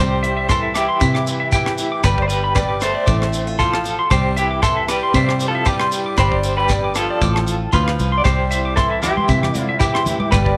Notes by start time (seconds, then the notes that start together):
Already playing: C2 C3
0.00 G3 C4 G4 C5
0.23 E4 E5, closed hi-hat
0.37 E5
0.48 E3 G3 E4 A4 C6, kick, cross-stick, shekere
0.63 E5
0.74 E3 E4 G4 D6, cross-stick, closed hi-hat, shekere
0.89 C6
1.00 G2 C3 E4 E5, kick, shekere
1.14 D6, cross-stick
1.27 C4, closed hi-hat, shekere
1.40 E5
1.52 B2 E3 E4 G4 G5, kick, shekere
1.66 cross-stick
1.78 A2, closed hi-hat, shekere
1.92 D6
2.04 G1 G2 G3 B3 D4 G4 B4 B5, kick, cross-stick, shekere
2.17 D5, kick
2.22 A3 C5
2.28 G3 G4 B4, closed hi-hat, shekere
2.44 B5
2.55 G3 B3 G4 B4 D5, kick, cross-stick, shekere
2.68 D6
2.80 A3 G4 A4 C5, cross-stick, closed hi-hat, shekere
2.95 D5
3.06 A1 A2 C4 D6, kick, shekere
3.22 cross-stick
3.33 D4, closed hi-hat, shekere
3.47 F4
3.59 A2 F3 F4 A4 C6, kick, shekere
3.73 cross-stick
3.84 B2, closed hi-hat, shekere
3.99 C6
4.10 C2 C3 G3 C4 G4 C5 D6, kick, cross-stick, shekere
4.36 E3 E4 G4 E5, closed hi-hat, shekere
4.51 D6
4.62 E3 G3 E4 A4 C6, kick, cross-stick, shekere
4.77 E5
4.88 G3 G4 B4 D6, cross-stick, closed hi-hat, shekere
5.03 C6
5.14 G2 C3 G3 E4 G4 C5 E5, kick, shekere
5.29 muted clean electric guitar stroke, cross-stick
5.40 C4, closed hi-hat, shekere
5.48 F3 F4 A4
5.55 E5
5.65 G3 G4 B4 D6, kick, shekere
5.69 G3
5.80 C6, cross-stick
5.92 E4, closed hi-hat, shekere
6.06 D6
6.17 G1 G2 D4 G4 C5 B5, kick, cross-stick, shekere
6.21 G3
6.32 D5, kick
6.43 G4, closed hi-hat, shekere
6.57 G3 G4 B4 B5
6.68 B3 D5, kick, cross-stick, shekere
6.84 D6
6.94 F3 F4 G4 A4, cross-stick, closed hi-hat, shekere
7.10 D5
7.21 A1 A2 C4 D6, kick, shekere
7.36 cross-stick
7.47 F4, closed hi-hat, shekere
7.73 D2 A2 F3 F4 B4 C6, kick, shekere
7.88 cross-stick
7.99 C2 B2, closed hi-hat, shekere
8.12 C6
8.18 B3 D5
8.24 C2 C3 G3 C4 G4 C5 D6, kick, cross-stick, shekere
8.51 E4 E5, closed hi-hat, shekere
8.65 D6
8.76 E3 G3 E4 A4 C6, kick, cross-stick, shekere
8.91 E5
9.02 E3 E4 G4 D6, cross-stick, closed hi-hat, low conga, shekere
9.17 C6, high conga
9.28 G2 C3 E4 E5, kick, shekere
9.43 D6, cross-stick, low conga
9.54 D3 C4, closed hi-hat, high conga, shekere
9.61 F4
9.69 E5
9.79 B2 E3 E4 G4 D6, kick, shekere
9.94 C6, cross-stick
10.06 A2, closed hi-hat, low conga, shekere
10.20 D6, high conga
10.31 G1 G2 G3 B3 G4 B4, muted clean electric guitar stroke, kick, cross-stick, shekere
10.36 D4 G4
10.45 D5, kick